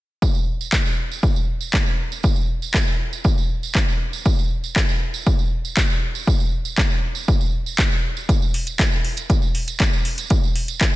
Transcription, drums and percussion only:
0.22 kick loud
0.22 tambourine medium
0.35 tambourine soft
0.61 tambourine medium
0.72 kick loud
0.72 clap loud
0.72 tambourine medium
0.86 tambourine soft
1.12 tambourine medium
1.23 kick loud
1.23 tambourine medium
1.36 tambourine soft
1.61 tambourine medium
1.74 kick loud
1.74 clap loud
1.74 tambourine medium
1.86 tambourine soft
2.12 tambourine medium
2.23 kick loud
2.23 tambourine medium
2.36 tambourine soft
2.62 tambourine medium
2.74 kick loud
2.74 clap loud
2.74 tambourine medium
2.88 tambourine soft
3.13 tambourine medium
3.24 kick loud
3.24 tambourine medium
3.38 tambourine soft
3.63 tambourine medium
3.75 kick loud
3.75 clap loud
3.75 tambourine medium
3.88 tambourine soft
4.13 tambourine medium
4.25 kick loud
4.25 tambourine medium
4.39 tambourine soft
4.64 tambourine medium
4.76 kick loud
4.76 clap loud
4.76 tambourine medium
4.89 tambourine soft
5.14 tambourine medium
5.26 kick loud
5.26 tambourine medium
5.39 tambourine soft
5.65 tambourine medium
5.77 kick loud
5.77 clap loud
5.77 tambourine medium
5.90 tambourine soft
6.15 tambourine medium
6.27 kick loud
6.27 tambourine medium
6.40 tambourine soft
6.65 tambourine medium
6.78 kick loud
6.78 clap loud
6.78 tambourine medium
6.90 tambourine soft
7.15 tambourine medium
7.28 kick loud
7.28 tambourine medium
7.41 tambourine soft
7.66 tambourine medium
7.79 kick loud
7.79 clap loud
7.79 tambourine medium
7.92 tambourine soft
8.17 tambourine medium
8.29 kick loud
8.29 closed hi-hat medium
8.29 tambourine medium
8.42 tambourine soft
8.54 open hi-hat loud
8.67 closed hi-hat soft
8.67 tambourine medium
8.79 kick loud
8.79 clap loud
8.79 closed hi-hat medium
8.79 tambourine medium
8.92 tambourine soft
9.05 open hi-hat medium
9.17 closed hi-hat soft
9.17 tambourine medium
9.30 kick loud
9.30 closed hi-hat medium
9.30 tambourine medium
9.42 tambourine soft
9.55 open hi-hat loud
9.68 closed hi-hat soft
9.68 tambourine medium
9.80 kick loud
9.80 clap loud
9.80 closed hi-hat medium
9.80 tambourine medium
9.93 tambourine soft
10.05 open hi-hat medium
10.18 closed hi-hat soft
10.18 tambourine medium
10.30 kick loud
10.30 closed hi-hat medium
10.30 tambourine medium
10.44 tambourine soft
10.56 open hi-hat medium
10.68 closed hi-hat soft
10.68 tambourine medium
10.81 kick loud
10.81 clap loud
10.81 closed hi-hat medium
10.81 tambourine medium

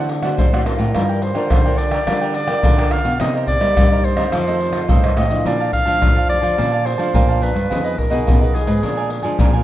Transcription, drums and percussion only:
0.09 pandeiro medium
0.23 pandeiro medium
0.23 tamborim medium
0.23 shaker medium
0.38 pandeiro medium
0.38 shaker medium
0.38 surdo medium
0.54 pandeiro soft
0.54 tamborim medium
0.54 shaker soft
0.66 pandeiro medium
0.66 tamborim medium
0.79 pandeiro medium
0.79 shaker medium
0.95 pandeiro medium
0.95 tamborim medium
0.95 shaker medium
0.95 surdo medium
1.09 pandeiro soft
1.09 shaker soft
1.22 pandeiro medium
1.22 shaker medium
1.35 pandeiro soft
1.35 tamborim medium
1.35 shaker medium
1.50 pandeiro medium
1.50 tamborim medium
1.50 shaker medium
1.50 surdo loud
1.66 pandeiro soft
1.66 shaker soft
1.78 pandeiro medium
1.78 shaker medium
1.91 pandeiro medium
1.91 tamborim medium
1.91 shaker medium
2.07 pandeiro medium
2.07 tamborim medium
2.07 shaker medium
2.07 surdo medium
2.21 pandeiro soft
2.21 shaker soft
2.34 pandeiro medium
2.34 shaker medium
2.48 pandeiro medium
2.48 tamborim medium
2.48 shaker medium
2.63 pandeiro medium
2.63 shaker medium
2.63 surdo loud
2.79 pandeiro soft
2.79 tamborim medium
2.79 shaker soft
2.91 pandeiro medium
2.91 tamborim medium
3.04 pandeiro medium
3.04 shaker medium
3.20 pandeiro medium
3.20 tamborim medium
3.20 shaker medium
3.20 surdo medium
3.35 pandeiro soft
3.35 shaker soft
3.47 pandeiro medium
3.47 shaker medium
3.47 surdo medium
3.61 pandeiro soft
3.61 tamborim medium
3.61 shaker medium
3.77 pandeiro medium
3.77 tamborim medium
3.77 shaker medium
3.77 surdo loud
3.91 pandeiro soft
3.91 shaker soft
4.04 pandeiro medium
4.04 shaker medium
4.17 pandeiro medium
4.17 tamborim medium
4.17 shaker medium
4.32 pandeiro medium
4.32 tamborim medium
4.32 shaker medium
4.32 surdo medium
4.47 pandeiro soft
4.47 shaker soft
4.60 pandeiro medium
4.60 shaker medium
4.73 pandeiro medium
4.73 tamborim medium
4.73 shaker medium
4.89 pandeiro medium
4.89 shaker medium
4.89 surdo loud
5.04 pandeiro soft
5.04 tamborim medium
5.04 shaker soft
5.17 pandeiro medium
5.17 tamborim medium
5.30 pandeiro medium
5.30 shaker medium
5.46 pandeiro medium
5.46 shaker medium
5.46 surdo medium
5.61 pandeiro soft
5.61 shaker soft
5.73 pandeiro medium
5.73 shaker medium
5.73 surdo medium
5.86 pandeiro soft
5.86 shaker medium
6.02 pandeiro medium
6.02 shaker medium
6.02 surdo medium
6.17 pandeiro soft
6.17 shaker soft
6.29 pandeiro medium
6.43 pandeiro medium
6.43 shaker medium
6.59 pandeiro medium
6.59 shaker medium
6.59 surdo medium
6.73 pandeiro soft
6.73 shaker soft
6.86 pandeiro medium
6.86 shaker medium
6.99 pandeiro medium
6.99 shaker medium
7.14 pandeiro medium
7.14 shaker medium
7.14 surdo medium
7.29 pandeiro soft
7.29 shaker soft
7.42 pandeiro medium
7.42 shaker medium
7.56 pandeiro medium
7.56 shaker medium
7.72 pandeiro medium
7.72 shaker medium
7.72 surdo medium
7.86 pandeiro soft
7.86 shaker soft
7.98 pandeiro medium
7.98 shaker medium
7.98 surdo medium
8.12 pandeiro soft
8.12 shaker medium
8.28 pandeiro medium
8.28 shaker medium
8.28 surdo loud
8.42 pandeiro soft
8.42 shaker soft
8.55 pandeiro medium
8.55 shaker medium
8.67 pandeiro medium
8.67 shaker medium
8.83 pandeiro medium
8.83 shaker medium
8.83 surdo medium
8.97 pandeiro soft
8.97 shaker soft
9.10 pandeiro medium
9.22 pandeiro medium
9.22 shaker medium
9.39 pandeiro medium
9.39 shaker medium
9.39 surdo loud
9.53 pandeiro soft
9.53 shaker soft

